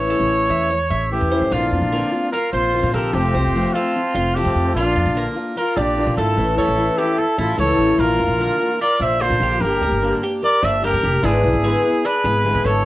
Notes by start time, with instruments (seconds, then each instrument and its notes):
Already playing: upright bass A1, steel-string acoustic guitar E3 A3 C#4 E4, trumpet C#5
0.10 cuban tres A4
0.20 upright bass A1
0.49 upright bass E2, cuban tres E5
0.70 cuban tres C#5, muted steel-string acoustic guitar stroke
0.90 upright bass A1, cuban tres E5
1.10 steel-string acoustic guitar E3 A3 C#4 E4, flute E4, trumpet G4
1.21 upright bass E2
1.31 steel-string acoustic guitar A3 C#4 E4, cuban tres C5
1.41 upright bass G1
1.51 upright bass A#1, steel-string acoustic guitar D3 A#3 C4 F4, flute D4, cuban tres F4, trumpet F4
1.72 upright bass F2, steel-string acoustic guitar A#3 C4 F4
1.81 upright bass A#1
1.92 steel-string acoustic guitar D3 A#3 C4 F4, cuban tres A#4
2.12 steel-string acoustic guitar A#3 C4 F4
2.32 flute F4, cuban tres F4, trumpet A#4, muted steel-string acoustic guitar stroke
2.53 upright bass A#1, steel-string acoustic guitar A#3 C4 F4, flute F4, trumpet C5, cuban tres C5
2.73 steel-string acoustic guitar D3 A#3 C4 F4
2.83 upright bass A#2
2.93 upright bass A#1, flute G4, cuban tres A4, trumpet A#4
3.13 upright bass F1, steel-string acoustic guitar C3 F3 A3 C4 F4, flute C4, trumpet G4
3.34 upright bass C2, steel-string acoustic guitar A3 C4 F4, cuban tres C5
3.45 upright bass F1
3.54 steel-string acoustic guitar C3 F3 A3 C4 F4
3.73 steel-string acoustic guitar A3 C4 F4, flute C4, trumpet F4, cuban tres A4
3.96 muted steel-string acoustic guitar stroke
4.15 upright bass F1, steel-string acoustic guitar A3 C4 F4, cuban tres F4
4.35 steel-string acoustic guitar C3 F3 A3 C4 F4, flute C4, trumpet G4, cuban tres A4
4.45 upright bass F2
4.55 upright bass F2
4.74 upright bass A#1, steel-string acoustic guitar D3 A#3 D4, flute D4, trumpet F4, cuban tres F4
4.78 steel-string acoustic guitar F4
4.95 upright bass F2, steel-string acoustic guitar A#3 D4 F4
5.05 upright bass A#1
5.15 steel-string acoustic guitar D3 A#3 D4 F4, cuban tres A#4
5.36 steel-string acoustic guitar A#3 D4 F4
5.56 cuban tres F4, flute F4, trumpet A#4, muted steel-string acoustic guitar stroke
5.76 upright bass A#1, steel-string acoustic guitar A#3 D4 F4, flute D4, trumpet G4, cuban tres D5
5.96 steel-string acoustic guitar D3 A#3 D4 F4
6.07 upright bass A#2
6.17 upright bass G#1, flute E4, trumpet A4, cuban tres A4
6.37 upright bass A1, steel-string acoustic guitar E3 A3 C#4 E4
6.57 upright bass E2, steel-string acoustic guitar A3 C#4 E4, flute E4, trumpet A4, cuban tres C#5
6.68 upright bass A1
6.76 steel-string acoustic guitar E3 A3 C#4 E4
6.98 steel-string acoustic guitar A3 C#4 E4, flute E4, trumpet G4, cuban tres A4
7.18 flute E4, trumpet A4, muted steel-string acoustic guitar stroke
7.38 upright bass A1, steel-string acoustic guitar A3 C#4 E4, cuban tres E4, flute F4, trumpet A4
7.57 upright bass C#2, steel-string acoustic guitar E3 A3 C#4 E4, cuban tres A4, flute A4, trumpet C#5
7.78 upright bass A1
7.98 upright bass A#1, steel-string acoustic guitar D3 A#3 D4 F4, cuban tres F4, flute F4, trumpet A#4
8.19 upright bass F2, steel-string acoustic guitar A#3 D4 F4
8.28 upright bass A#1
8.38 steel-string acoustic guitar D3 A#3 D4 F4, cuban tres A#4
8.60 steel-string acoustic guitar A#3 D4 F4
8.80 cuban tres F4, flute A#4, trumpet D5, muted steel-string acoustic guitar stroke
8.99 upright bass A#1, steel-string acoustic guitar A#3 D4 F4, flute C5, cuban tres D5, trumpet E5
9.20 steel-string acoustic guitar D3 A#3 D4 F4, flute F4, trumpet C5
9.30 upright bass A#2
9.40 upright bass A#1, cuban tres G4
9.61 upright bass G1, steel-string acoustic guitar D3 G3 A#3 D4 G4, flute G4, trumpet A#4
9.82 upright bass D2, steel-string acoustic guitar A#3 D4 G4, cuban tres A#4
9.91 upright bass G1
10.02 steel-string acoustic guitar D3 G3 A#3 D4 G4
10.22 steel-string acoustic guitar A#3 D4 G4, cuban tres G4
10.42 flute A#4, trumpet D5, muted steel-string acoustic guitar stroke
10.62 upright bass G1, steel-string acoustic guitar A#3 D4 G4, cuban tres D4, flute C5, trumpet E5
10.82 steel-string acoustic guitar D3 G3 A#3 D4 G4, flute G4, cuban tres G4, trumpet A#4
10.93 upright bass G2
11.03 upright bass F1
11.23 upright bass G#1, steel-string acoustic guitar D3 G#3 B3 E4 G#4, cuban tres D4, flute E4, trumpet G#4
11.43 upright bass B1, steel-string acoustic guitar B3 E4 G#4
11.53 upright bass G#1
11.63 steel-string acoustic guitar D3 G#3 B3 E4 G#4, cuban tres G#4
11.84 steel-string acoustic guitar B3 E4 G#4
12.05 cuban tres D4, flute G#4, trumpet B4, muted steel-string acoustic guitar stroke
12.24 upright bass G#1, steel-string acoustic guitar B3 E4 G#4, cuban tres B4
12.44 steel-string acoustic guitar D3 G#3 B3 E4 G#4
12.55 upright bass G#2
12.64 upright bass G#1, flute A4, cuban tres A4, trumpet C#5